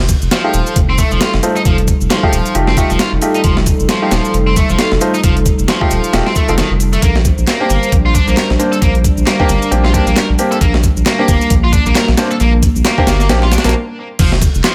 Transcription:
Already playing: F1 G3 D#4 A4
0.09 kick, closed hi-hat, shaker
0.22 F1, shaker
0.31 F3, snare, closed hi-hat, shaker
0.44 A3 D#4 F4 G4
0.54 D#1, closed hi-hat, shaker
0.67 shaker
0.76 F1, kick, closed hi-hat, shaker
0.89 C4
0.98 A3, kick, closed hi-hat, shaker
1.11 F1 F3, shaker
1.21 F4, snare, closed hi-hat, shaker
1.34 F1, snare
1.43 A3 D#4 F4 C5, closed hi-hat, shaker
1.56 D#4, shaker
1.65 F1 F3, kick, closed hi-hat, shaker
1.78 closed hi-hat
1.88 kick, closed hi-hat, shaker
2.01 F1, shaker
2.10 F3, snare, closed hi-hat, shaker
2.23 A3 D#4 F4 G4, kick
2.32 D#1, closed hi-hat, shaker
2.46 closed hi-hat, shaker
2.55 F1 A3 D#4 F4 G4, closed hi-hat, shaker
2.67 C4, snare
2.77 A3 D#4 F4 G4, kick, closed hi-hat, shaker
2.90 F1 F3, closed hi-hat, shaker
2.99 F4, snare, closed hi-hat, shaker
3.12 F1
3.22 A3 D#4 F4 G4, closed hi-hat, shaker
3.34 D#4, closed hi-hat, shaker
3.44 F1 F3, kick, closed hi-hat, shaker
3.57 snare
3.66 kick, closed hi-hat, shaker
3.79 F1, shaker
3.89 F3, snare, closed hi-hat, shaker
4.02 A3 D#4 F4 G4
4.11 D#1, snare, closed hi-hat, shaker
4.25 shaker
4.34 F1, closed hi-hat, shaker
4.47 C4
4.56 A3, kick, closed hi-hat, shaker
4.69 F1 F3, shaker
4.79 F4, snare, closed hi-hat, shaker
4.92 F1, snare
5.01 A3 D#4 F4 C5, closed hi-hat, shaker
5.14 D#4, shaker
5.24 F1 F3, kick, closed hi-hat, shaker
5.37 closed hi-hat
5.46 kick, closed hi-hat, shaker
5.59 F1, shaker
5.68 F3, snare, closed hi-hat, shaker
5.81 A3 D#4 F4 G4, kick
5.91 D#1, closed hi-hat, shaker
6.04 closed hi-hat, shaker
6.13 D#1 A3 D#4 F4 G4, snare, closed hi-hat, shaker
6.26 C4, snare
6.35 A3, kick, closed hi-hat, shaker
6.48 F1 A3 C4 D#4 F4 A4, closed hi-hat, shaker
6.58 D#3, snare, closed hi-hat, shaker
6.70 F1
6.80 closed hi-hat, shaker
6.93 A3, closed hi-hat, shaker
7.02 A#1 G3 A#3 D4 C5, kick, closed hi-hat, shaker
7.16 snare
7.25 kick, closed hi-hat, shaker
7.38 A#1, shaker
7.47 A#3, snare, clap, closed hi-hat, shaker
7.60 A#3 C4 D4 G4
7.70 G1, closed hi-hat, shaker
7.83 shaker
7.92 A#1, kick, closed hi-hat, shaker
8.06 F4
8.15 D4, kick, closed hi-hat, shaker
8.28 A#1 A#3, shaker
8.37 A#4, snare, clap, closed hi-hat, shaker
8.50 A#1, snare
8.59 A#3 C4 D4 C5, closed hi-hat, shaker
8.72 A4, shaker
8.82 A#1 A#3, kick, closed hi-hat, shaker
8.95 closed hi-hat
9.04 kick, closed hi-hat, shaker
9.17 A#1, shaker
9.26 A#3, snare, clap, closed hi-hat, shaker
9.40 A#3 C4 D4 G4, kick
9.49 G1, closed hi-hat, shaker
9.62 closed hi-hat, shaker
9.71 A#1 A#3 C4 D4 G4, closed hi-hat, shaker
9.84 F4, snare
9.94 A#3 C4 D4 G4, kick, closed hi-hat, shaker
10.07 A#1 A#3, closed hi-hat, shaker
10.16 A#4, snare, clap, closed hi-hat, shaker
10.29 A#1
10.39 A#3 C4 D4 G4, closed hi-hat, shaker
10.52 A4, closed hi-hat, shaker
10.60 A#1 A#3, kick, closed hi-hat, shaker
10.74 snare
10.83 kick, closed hi-hat, shaker
10.96 A#1, shaker
11.06 A#3, snare, clap, closed hi-hat, shaker
11.19 A#3 C4 D4 G4
11.28 G1, kick, closed hi-hat, shaker
11.41 shaker
11.50 A#1, kick, closed hi-hat, shaker
11.64 F4
11.73 D4, kick, closed hi-hat, shaker
11.86 A#1 A#3, shaker
11.95 A#4, snare, clap, closed hi-hat, shaker
12.08 A#1, snare
12.17 A#3 C4 D4 C5, snare, closed hi-hat, shaker
12.31 A4, shaker
12.40 A#1 A#3, closed hi-hat, shaker
12.63 kick, closed hi-hat, shaker
12.75 A#1, shaker
12.85 A#3, snare, clap, closed hi-hat, shaker
12.98 A#3 C4 D4 G4, kick
13.07 G1, snare, closed hi-hat, shaker
13.20 snare, shaker
13.29 A#1 A#3 C4 D4 G4, snare, closed hi-hat, shaker
13.42 F4, snare
13.52 D4, snare, closed hi-hat, shaker
13.58 snare, closed hi-hat
13.64 A#1 A#3 C4 D4 A#4, snare, closed hi-hat, shaker
13.69 snare, closed hi-hat
14.19 F1 F3 G3 D#4 A4, kick, closed hi-hat, crash, shaker
14.32 snare
14.42 kick, closed hi-hat, shaker
14.55 F1, shaker
14.64 F3, snare, clap, closed hi-hat, shaker

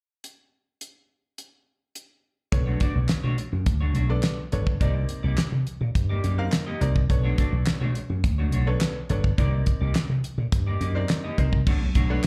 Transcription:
0.24 closed hi-hat
0.81 closed hi-hat
1.38 closed hi-hat
1.95 closed hi-hat
2.52 B1 B3 D4 A4 C#5, muted clean electric guitar stroke, kick, closed hi-hat
2.66 A3 D4 F#4 C#5
2.80 A3 D4 F#4 D5, kick, closed hi-hat
2.95 B1, muted clean electric guitar stroke
3.09 muted clean electric guitar stroke, snare, clap, closed hi-hat
3.23 B2 A3 D4 F#4 C#5
3.38 muted clean electric guitar stroke, closed hi-hat
3.52 F#2, muted clean electric guitar stroke
3.66 D2, muted clean electric guitar stroke, kick, closed hi-hat
3.81 A3 D4 F#4 C#5
3.95 B1 A3 D4 F#4 C#5, closed hi-hat
4.09 B3 D4 A4 D5, muted clean electric guitar stroke
4.23 muted clean electric guitar stroke, snare, clap, closed hi-hat
4.38 muted clean electric guitar stroke
4.52 G1 B3 D4 A4 C#5, closed hi-hat
4.66 muted clean electric guitar stroke, kick
4.80 C2 A#3 C4 D#4 G4 A#4 D5, kick, closed hi-hat
4.95 muted clean electric guitar stroke
5.09 muted clean electric guitar stroke, closed hi-hat
5.23 C2 A#3 D#4 G4 D5
5.38 muted clean electric guitar stroke, muted slap bass stroke, snare, clap, closed hi-hat
5.52 C3, muted clean electric guitar stroke
5.67 closed hi-hat
5.81 A#2, muted clean electric guitar stroke
5.95 G2, muted clean electric guitar stroke, kick, closed hi-hat
6.09 A#3 D#4 G4 D5
6.24 F#2 A#3 D#4 G4 D5, closed hi-hat
6.38 C4 D#4 A#4 F5, muted clean electric guitar stroke
6.52 muted clean electric guitar stroke, snare, clap, closed hi-hat
6.67 A#3 D#4 G4 D#5
6.81 C2 C4 D#4 A#4 D5, muted clean electric guitar stroke, closed hi-hat
6.95 muted clean electric guitar stroke, kick
7.09 B1 B3 D4 A4 C#5, muted clean electric guitar stroke, kick, closed hi-hat
7.23 A3 D4 F#4 C#5
7.38 A3 D4 F#4 D5, kick, closed hi-hat
7.52 B1, muted clean electric guitar stroke
7.67 muted clean electric guitar stroke, snare, clap, closed hi-hat
7.81 B2 A3 D4 F#4 C#5
7.95 muted clean electric guitar stroke, closed hi-hat
8.10 F#2, muted clean electric guitar stroke
8.24 D2, muted clean electric guitar stroke, kick, closed hi-hat
8.38 A3 D4 F#4 C#5
8.52 B1 A3 D4 F#4 C#5, closed hi-hat
8.67 B3 D4 A4 C#5, muted clean electric guitar stroke
8.81 muted clean electric guitar stroke, snare, clap, closed hi-hat
8.96 muted clean electric guitar stroke
9.09 G1 B3 D4 A4 C#5, closed hi-hat
9.24 muted clean electric guitar stroke, kick
9.38 C2 A#3 C4 D#4 G4 A#4 D5, kick, closed hi-hat
9.52 muted clean electric guitar stroke
9.66 muted clean electric guitar stroke, kick, closed hi-hat
9.81 C2 A#3 D#4 G4 D5
9.95 muted slap bass stroke, muted clean electric guitar stroke, snare, clap, closed hi-hat
10.09 C3, muted clean electric guitar stroke
10.24 closed hi-hat
10.38 A#2, muted clean electric guitar stroke
10.52 G2, muted clean electric guitar stroke, kick, closed hi-hat
10.67 A#3 D#4 G4 D5
10.81 F#2 A#3 D#4 G4 D5, closed hi-hat
10.95 C4 D#4 A#4 D5, muted clean electric guitar stroke
11.09 muted clean electric guitar stroke, snare, clap, closed hi-hat
11.24 A#3 D#4 G4 D#5
11.38 C2 C4 D#4 A#4 C5, muted clean electric guitar stroke, kick, closed hi-hat
11.52 muted clean electric guitar stroke, kick
11.67 B1 A3 D4 F#4 C#5, kick, crash
11.81 muted clean electric guitar stroke
11.95 B1 A3 D4 F#4 C#5, kick, closed hi-hat
12.09 A3 D4 F#4 A4 B4 C#5 F#5

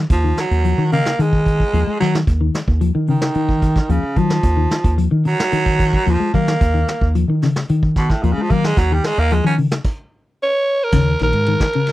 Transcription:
0.10 D#2 F3, kick, closed hi-hat
0.24 D#3
0.37 F#3, snare, closed hi-hat
0.51 D#2, closed hi-hat
0.64 F3, closed hi-hat
0.78 D#3
0.92 C#3 A#3, open hi-hat
1.05 snare, closed hi-hat
1.19 D#3 G#3, closed hi-hat
1.33 kick
1.46 kick, closed hi-hat
1.60 kick
1.73 D#2 F3, closed hi-hat
1.87 G#3, muted fingered electric bass stroke
2.00 D#3 F#3, snare, closed hi-hat
2.14 snare, closed hi-hat
2.27 D#2, kick, closed hi-hat
2.41 D#3
2.54 snare, closed hi-hat
2.68 D#2, kick
2.81 F3, closed hi-hat
2.95 D#3
3.07 C#3 D#3, open hi-hat
3.21 snare
3.34 D#3, closed hi-hat
3.49 kick
3.62 kick, closed hi-hat
3.76 kick, snare
3.89 D#2 C#3 F3, closed hi-hat
4.03 muted clean electric guitar stroke
4.16 D#3 F3 F#3, kick, closed hi-hat
4.30 snare
4.43 D#2, kick, closed hi-hat
4.57 D#3
4.71 snare, closed hi-hat
4.84 D#2, kick, closed hi-hat
4.98 F3, closed hi-hat
5.11 D#3
5.25 F#3, muted clean electric guitar stroke, open hi-hat
5.39 snare, closed hi-hat
5.52 D#3, closed hi-hat
5.66 kick
5.80 kick, closed hi-hat
5.93 kick
6.07 D#2 F3, closed hi-hat
6.20 G#3
6.34 D#3 F#3 A#3, kick, closed hi-hat
6.47 snare, closed hi-hat
6.61 D#2, kick, closed hi-hat
6.74 D#3
6.88 snare, closed hi-hat
7.01 D#2, kick
7.15 F3, closed hi-hat
7.28 D#3
7.42 C#3, snare, open hi-hat
7.56 snare
7.69 D#3, closed hi-hat
7.83 kick
7.96 B2, kick, snare, closed hi-hat
8.10 A2, kick, snare
8.23 D#2 A#2 F3, closed hi-hat
8.33 C#3
8.37 G#3
8.42 F3
8.50 D#3 F#3 A#3, kick, closed hi-hat
8.64 G#3, snare
8.77 D#2 F#3, kick, snare, closed hi-hat
8.91 D#3 G3
9.04 G#3, snare, closed hi-hat
9.17 D#2 A#3, closed hi-hat
9.30 F3 G#3, closed hi-hat
9.44 D#3 F3 C#4
9.58 C#3, open hi-hat
9.71 snare, closed hi-hat
9.84 kick, crash
10.43 C#5
10.84 A#4
10.92 D#2 C#3, kick, crash
11.19 A#1 D#3 A#4, snare, ride bell
11.33 G#2, ride bell
11.46 D#3, ride bell
11.60 kick, snare
11.73 C#3, ride bell
11.87 snare, ride bell

